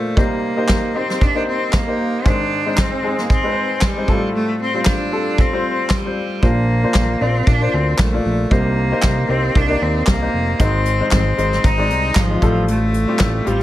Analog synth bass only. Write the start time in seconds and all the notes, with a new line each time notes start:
6.43 A#1
6.95 A#1
7.21 A#1
7.47 A#1
7.74 D2
7.99 A#1
8.26 A#1
8.51 C2
9.03 C2
9.29 C2
9.55 C2
9.82 D#2
10.08 C2
10.34 F1
10.60 G#1
11.13 G#1
11.38 G#1
11.64 G#1
11.91 C2
12.16 G#1
12.42 A1
13.20 A1
13.47 A1